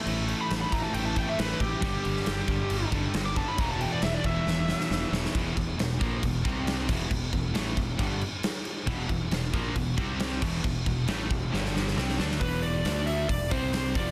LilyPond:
<<
  \new Staff \with { instrumentName = "Lead electric guitar" } { \time 4/4 \key e \minor \tempo 4 = 136 r8. b''16 r16 b''16 ais''16 a''16 g''16 a''16 g''16 e''16 b'8 g'8~ | g'2~ g'8 r8. d'''16 a''16 b''16 | ais''16 a''16 g''16 d''16 e''16 d''16 e''2 r8 | r1 |
r1 | r1 | r1 | b'8 d''4 e''8 d''8 c''8 c''8 d''8 | }
  \new Staff \with { instrumentName = "Distorted electric guitar" } { \clef bass \time 4/4 \key e \minor <a, e a>8 <a, e a>8 <a, e a>8 <a, e a>8 <a, e a>8 <a, e a>8 <a, e a>8 <a, e a>8 | <g, d g>8 <g, d g>8 <g, d g>8 <g, d g>8 <g, d g>8 <g, d g>8 <g, d g>8 <g, d g>8 | <e, b, e>8 <e, b, e>8 <e, b, e>8 <e, b, e>8 <e, b, e>8 <e, b, e>8 <e, b, e>8 <e, b, e>8 | r1 |
r1 | <e, b, e>8 <e, b,>8 <e, b,>8 <ais, f ais>8 <e, b,>8 <c g c'>4 <e, b, e>8 | <e, b,>8 <e, b,>8 <a, e a>8 <e, b,>8 <g, d g>4 <c g c'>8 <d a d'>8 | r1 | }
  \new Staff \with { instrumentName = "Overdriven electric guitar" } { \clef bass \time 4/4 \key e \minor <a, e a>2. <a, e a>8 r8 | <g, d g>2.~ <g, d g>8 <g, d g>8 | <e, b, e>2.~ <e, b, e>8 <e, b, e>8 | <e, b, e>8 <e, b,>8 <e, b,>8 <ais, f ais>8 <e, b,>8 <c g c'>4 <e, b, e>8 |
<e, b,>8 <e, b,>8 <a, e a>8 <e, b,>8 <g, d g>8 r4. | <e, b, e>8 <e, b,>8 <e, b,>8 <ais, f ais>8 <e, b,>8 <c g c'>4 <e, b, e>8 | <e, b,>8 <e, b,>8 <a, e a>8 <e, b,>8 <g, d g>4 <c g c'>8 <d a d'>8 | <e, b, e>4 <d a d'>4 <e, b,>8 <c g c'>4 <f, c f>8 | }
  \new Staff \with { instrumentName = "Overdriven electric guitar" } { \clef bass \time 4/4 \key e \minor <a, e a>2 <a, e a>8 <a, e a>4 r8 | <g, d g>2~ <g, d g>8 <g, d g>8 <g, d g>4 | <e, b, e>2~ <e, b, e>8 <e, b, e>8 <e, b, e>4 | <e, b, e>8 <e, b,>8 <e, b,>8 <ais, f ais>8 <e, b,>8 <c g c'>4 <e, b, e>8 |
<e, b,>8 <e, b,>8 <a, e a>8 <e, b,>8 <g, d g>8 r4. | <e, b, e>8 <e, b,>8 <e, b,>8 <ais, f ais>8 <e, b,>8 <c g c'>4 <e, b, e>8 | <e, b,>8 <e, b,>8 <a, e a>8 <e, b,>8 <g, d g>4 <c g c'>8 <d a d'>8 | <e, b, e>4 <d a d'>4 <e, b,>8 <c g c'>4 <f, c f>8 | }
  \new Staff \with { instrumentName = "Fingered electric bass" } { \clef bass \time 4/4 \key e \minor a,,4 a,,8 a,,8 a,,4 a,,8 a,,8 | g,,8 g,,8 g,,8 g,,8 g,,8 g,,8 g,,4 | e,,4 e,,8 e,,8 e,,4 e,,8 e,,8 | e,,8 e,,8 e,,8 ais,,8 e,,8 c,4 e,,8 |
e,,8 e,,8 a,,8 e,,8 g,,8 r4. | e,,8 e,,8 e,,8 ais,,8 e,,8 c,4 e,,8 | e,,8 e,,8 a,,8 e,,8 g,,4 c,8 d,8 | e,,4 d,4 e,,8 c,4 f,,8 | }
  \new DrumStaff \with { instrumentName = "Drums" } \drummode { \time 4/4 cymc8 cymc8 <cymc sn>8 <cymc bd>8 cymc8 <cymc bd>8 <cymc sn>8 <cymc bd>8 | <cymc bd>8 cymc16 sn16 <cymc sn>8 <cymc bd>8 cymc8 <cymc bd>8 <cymc sn>8 <cymc bd>8 | <cymc bd>8 cymc8 <cymc sn>8 <cymc bd>8 sn8 sn16 sn16 sn8 sn16 sn16 | <cymc bd>8 <cymc bd>8 <cymc sn>8 <cymc bd>8 <cymc bd>8 <cymc bd>8 <cymc sn>8 <cymc bd>8 |
<cymc bd>8 <cymc bd>8 <cymc sn>8 <cymc bd>8 <cymc bd>8 cymc8 <cymc sn>8 cymc8 | <cymc bd>8 <cymc bd>8 <cymc sn>8 <cymc bd>8 <cymc bd>8 <cymc bd>8 <cymc sn>8 <cymc bd>8 | <cymc bd>8 <cymc bd>8 <cymc sn>8 <cymc bd>8 sn16 sn16 sn16 sn16 sn16 sn16 sn16 sn16 | <hho bd>8 hho8 <hho sn>8 hho8 <hho bd>8 <hho bd>8 <hho sn>8 <hho bd>8 | }
>>